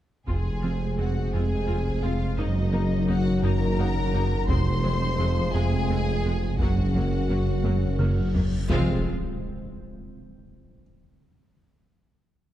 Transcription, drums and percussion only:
0.27 taiko medium
1.86 taiko soft
4.48 taiko medium
6.59 taiko medium
6.94 taiko low soft
7.64 taiko high medium
7.99 taiko mid medium
8.34 taiko low medium
8.70 taiko loud

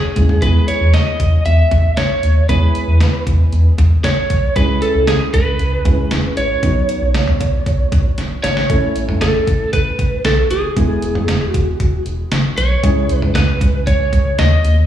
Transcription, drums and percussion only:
0.16 kick medium
0.16 closed hi-hat medium
0.29 mid tom medium
0.42 kick loud
0.42 closed hi-hat medium
0.68 closed hi-hat medium
0.94 snare loud
0.94 closed hi-hat medium
1.20 kick medium
1.20 closed hi-hat medium
1.46 closed hi-hat medium
1.71 kick medium
1.71 closed hi-hat medium
1.71 mid tom medium
1.97 snare loud
1.97 closed hi-hat medium
2.23 closed hi-hat medium
2.49 kick loud
2.49 closed hi-hat medium
2.75 closed hi-hat medium
3.00 snare loud
3.00 closed hi-hat medium
3.27 kick medium
3.27 closed hi-hat medium
3.53 closed hi-hat medium
3.78 kick medium
3.78 closed hi-hat medium
3.78 mid tom medium
4.04 snare loud
4.04 closed hi-hat medium
4.30 kick medium
4.30 closed hi-hat medium
4.56 kick loud
4.56 closed hi-hat medium
4.82 closed hi-hat medium
5.07 snare loud
5.07 closed hi-hat medium
5.34 kick medium
5.34 closed hi-hat medium
5.59 closed hi-hat medium
5.85 kick medium
5.85 closed hi-hat medium
5.85 mid tom medium
6.11 snare loud
6.11 closed hi-hat medium
6.37 closed hi-hat medium
6.63 kick loud
6.63 closed hi-hat medium
6.89 closed hi-hat medium
7.14 snare loud
7.14 closed hi-hat medium
7.28 mid tom medium
7.40 kick medium
7.40 closed hi-hat medium
7.66 kick medium
7.66 closed hi-hat medium
7.92 kick medium
7.92 closed hi-hat medium
7.92 mid tom medium
8.18 snare medium
8.18 closed hi-hat medium
8.44 snare medium
8.44 closed hi-hat medium
8.57 snare medium
8.70 kick loud
8.70 closed hi-hat medium
8.96 closed hi-hat medium
9.09 mid tom medium
9.21 snare loud
9.21 closed hi-hat medium
9.47 kick medium
9.47 closed hi-hat medium
9.73 kick medium
9.73 closed hi-hat medium
9.99 kick medium
9.99 closed hi-hat medium
10.25 snare loud
10.25 closed hi-hat medium
10.51 closed hi-hat medium
10.77 kick loud
10.77 closed hi-hat medium
11.02 closed hi-hat medium
11.15 mid tom medium
11.28 snare loud
11.28 closed hi-hat medium
11.54 kick medium
11.54 closed hi-hat medium
11.80 kick medium
11.80 closed hi-hat medium
12.06 closed hi-hat medium
12.32 snare loud
12.32 closed hi-hat medium
12.58 closed hi-hat medium
12.84 kick loud
12.84 closed hi-hat medium
13.09 closed hi-hat medium
13.22 mid tom medium
13.35 snare loud
13.35 closed hi-hat medium
13.61 kick medium
13.61 closed hi-hat medium
13.87 kick medium
13.87 closed hi-hat medium
14.13 kick medium
14.13 closed hi-hat medium
14.39 snare loud
14.39 closed hi-hat medium
14.65 closed hi-hat medium

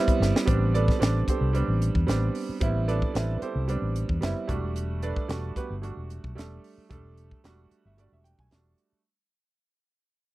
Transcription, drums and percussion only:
0.08 kick medium
0.08 closed hi-hat soft
0.22 snare medium
0.36 snare medium
0.48 kick loud
0.48 closed hi-hat medium
0.75 closed hi-hat medium
0.88 kick medium
0.88 snare soft
1.02 snare loud
1.02 closed hi-hat medium
1.28 kick medium
1.28 closed hi-hat medium
1.55 closed hi-hat medium
1.82 closed hi-hat medium
1.95 kick medium
2.08 snare medium
2.08 closed hi-hat medium
2.35 open hi-hat medium
2.61 kick loud
2.61 closed hi-hat medium
2.89 closed hi-hat soft
3.02 kick medium
3.15 snare loud
3.15 closed hi-hat medium
3.42 closed hi-hat medium
3.69 closed hi-hat medium
3.96 closed hi-hat medium
4.09 kick medium
4.22 snare medium
4.22 closed hi-hat medium
4.49 kick medium
4.49 closed hi-hat soft
4.76 closed hi-hat medium
5.02 closed hi-hat medium
5.16 kick medium
5.29 snare loud
5.29 closed hi-hat medium
5.56 kick medium
5.56 closed hi-hat soft
5.83 closed hi-hat medium
6.10 closed hi-hat medium
6.24 kick medium
6.38 snare medium
6.38 closed hi-hat medium
6.64 open hi-hat medium
6.91 kick medium
6.91 closed hi-hat medium
7.17 closed hi-hat soft
7.31 kick medium
7.44 snare medium
7.44 closed hi-hat medium
7.71 closed hi-hat soft
7.98 closed hi-hat medium
8.25 closed hi-hat medium
8.39 kick medium
8.51 snare medium
8.51 closed hi-hat medium
8.78 closed hi-hat soft

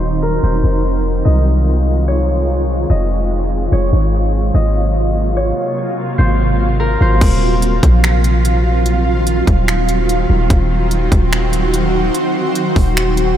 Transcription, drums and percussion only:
7.21 kick loud
7.21 closed hi-hat medium
7.21 crash medium
7.62 closed hi-hat medium
7.83 kick medium
7.83 closed hi-hat medium
8.04 finger snap loud
8.04 closed hi-hat medium
8.24 closed hi-hat medium
8.45 closed hi-hat medium
8.86 closed hi-hat medium
9.27 closed hi-hat medium
9.47 kick medium
9.47 closed hi-hat medium
9.68 finger snap loud
9.68 closed hi-hat medium
9.89 closed hi-hat medium
10.09 closed hi-hat medium
10.50 kick loud
10.50 closed hi-hat medium
10.91 closed hi-hat medium
11.12 kick loud
11.12 closed hi-hat medium
11.32 finger snap loud
11.32 closed hi-hat medium
11.53 closed hi-hat medium
11.74 closed hi-hat medium
12.14 closed hi-hat medium
12.55 closed hi-hat medium
12.76 kick medium
12.76 open hi-hat medium
12.97 finger snap loud
12.97 closed hi-hat medium
13.17 closed hi-hat medium

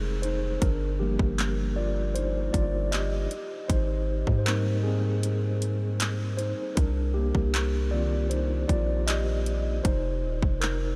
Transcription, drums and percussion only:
0.23 closed hi-hat medium
0.62 kick loud
0.62 closed hi-hat medium
1.19 kick medium
1.39 clap loud
1.39 closed hi-hat medium
2.16 closed hi-hat medium
2.54 kick medium
2.54 closed hi-hat medium
2.93 clap loud
2.93 closed hi-hat medium
3.31 closed hi-hat medium
3.70 kick loud
3.70 closed hi-hat medium
4.27 kick medium
4.46 clap loud
4.46 closed hi-hat medium
5.23 closed hi-hat medium
5.62 closed hi-hat medium
6.00 clap loud
6.00 closed hi-hat medium
6.39 closed hi-hat medium
6.77 kick loud
6.77 closed hi-hat medium
7.35 kick medium
7.54 clap loud
7.54 closed hi-hat medium
8.31 closed hi-hat medium
8.69 kick medium
8.69 closed hi-hat medium
9.08 clap loud
9.08 closed hi-hat medium
9.46 closed hi-hat medium
9.85 kick loud
9.85 closed hi-hat medium
10.42 kick medium
10.62 clap loud
10.62 closed hi-hat medium

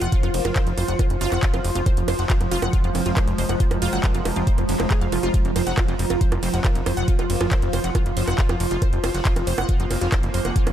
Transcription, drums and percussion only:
0.01 closed hi-hat medium
0.12 kick loud
0.12 closed hi-hat medium
0.23 closed hi-hat medium
0.23 high bongo soft
0.34 open hi-hat loud
0.34 ride medium
0.45 closed hi-hat medium
0.45 high bongo medium
0.56 kick loud
0.56 clap loud
0.56 closed hi-hat loud
0.67 closed hi-hat medium
0.78 open hi-hat loud
0.78 ride medium
0.78 high bongo soft
0.88 closed hi-hat medium
0.99 kick loud
0.99 closed hi-hat loud
0.99 high bongo medium
1.10 closed hi-hat medium
1.21 open hi-hat loud
1.21 ride medium
1.32 clap soft
1.32 closed hi-hat medium
1.32 high bongo soft
1.43 kick loud
1.43 clap loud
1.43 closed hi-hat medium
1.54 closed hi-hat medium
1.54 high bongo medium
1.65 open hi-hat loud
1.65 ride medium
1.75 closed hi-hat medium
1.86 kick loud
1.86 closed hi-hat medium
1.86 high bongo soft
1.97 closed hi-hat medium
2.08 open hi-hat loud
2.08 ride medium
2.08 high bongo medium
2.19 closed hi-hat soft
2.30 kick loud
2.30 clap loud
2.30 closed hi-hat medium
2.41 closed hi-hat medium
2.41 high bongo soft
2.51 open hi-hat loud
2.51 ride medium
2.62 closed hi-hat medium
2.62 high bongo medium
2.73 kick loud
2.73 closed hi-hat medium
2.84 closed hi-hat medium
2.95 open hi-hat loud
2.95 ride medium
2.95 high bongo soft
3.06 closed hi-hat soft
3.17 kick loud
3.17 clap loud
3.17 closed hi-hat medium
3.17 high bongo medium
3.28 closed hi-hat medium
3.38 open hi-hat loud
3.38 ride medium
3.49 closed hi-hat medium
3.49 high bongo soft
3.60 kick loud
3.60 closed hi-hat medium
3.71 closed hi-hat medium
3.71 high bongo medium
3.82 open hi-hat loud
3.82 ride medium
3.93 closed hi-hat soft
4.04 kick loud
4.04 clap loud
4.04 closed hi-hat medium
4.04 high bongo soft
4.15 closed hi-hat medium
4.25 open hi-hat loud
4.25 ride medium
4.25 high bongo medium
4.36 closed hi-hat medium
4.47 kick loud
4.47 closed hi-hat medium
4.58 closed hi-hat medium
4.58 high bongo soft
4.69 open hi-hat loud
4.69 ride medium
4.80 clap soft
4.80 closed hi-hat medium
4.80 high bongo medium
4.91 kick loud
4.91 clap loud
4.91 closed hi-hat medium
5.01 closed hi-hat medium
5.12 open hi-hat loud
5.12 ride medium
5.12 high bongo soft
5.23 closed hi-hat soft
5.34 kick loud
5.34 closed hi-hat medium
5.45 closed hi-hat medium
5.56 open hi-hat loud
5.56 ride medium
5.56 high bongo soft
5.67 closed hi-hat soft
5.78 kick loud
5.78 clap loud
5.78 closed hi-hat medium
5.78 high bongo medium
5.88 closed hi-hat medium
5.99 open hi-hat loud
5.99 ride medium
6.10 closed hi-hat medium
6.10 high bongo soft
6.21 kick loud
6.21 closed hi-hat medium
6.32 closed hi-hat medium
6.32 high bongo medium
6.43 open hi-hat loud
6.43 ride medium
6.54 closed hi-hat soft
6.64 kick loud
6.64 clap loud
6.64 closed hi-hat medium
6.64 high bongo soft
6.75 closed hi-hat soft
6.86 open hi-hat loud
6.86 ride medium
6.86 high bongo medium
6.97 closed hi-hat medium
7.08 kick loud
7.08 closed hi-hat medium
7.19 closed hi-hat medium
7.19 high bongo soft
7.30 open hi-hat loud
7.30 ride medium
7.41 closed hi-hat soft
7.41 high bongo medium
7.51 kick loud
7.51 clap loud
7.51 closed hi-hat medium
7.62 closed hi-hat medium
7.73 open hi-hat loud
7.73 ride medium
7.73 high bongo soft
7.84 closed hi-hat medium
7.95 kick loud
7.95 closed hi-hat loud
7.95 high bongo medium
8.06 closed hi-hat medium
8.17 open hi-hat loud
8.17 ride medium
8.28 clap soft
8.28 closed hi-hat medium
8.28 high bongo soft
8.38 kick loud
8.38 clap loud
8.38 closed hi-hat medium
8.49 closed hi-hat medium
8.49 high bongo medium
8.60 open hi-hat loud
8.60 ride medium
8.71 closed hi-hat medium
8.82 kick loud
8.82 closed hi-hat loud
8.82 high bongo soft
8.93 closed hi-hat medium
9.04 open hi-hat loud
9.04 ride medium
9.04 high bongo medium
9.14 closed hi-hat medium
9.25 kick loud
9.25 clap loud
9.25 closed hi-hat medium
9.36 closed hi-hat medium
9.36 high bongo soft
9.47 open hi-hat loud
9.47 ride medium
9.58 closed hi-hat medium
9.58 high bongo medium
9.69 kick loud
9.69 closed hi-hat loud
9.80 closed hi-hat medium
9.91 open hi-hat loud
9.91 ride medium
9.91 high bongo soft
10.01 closed hi-hat medium
10.12 kick loud
10.12 clap loud
10.12 closed hi-hat medium
10.12 high bongo medium
10.23 closed hi-hat medium
10.34 open hi-hat loud
10.34 ride medium
10.45 closed hi-hat medium
10.45 high bongo soft
10.56 kick loud
10.56 closed hi-hat loud
10.67 closed hi-hat medium
10.67 high bongo medium

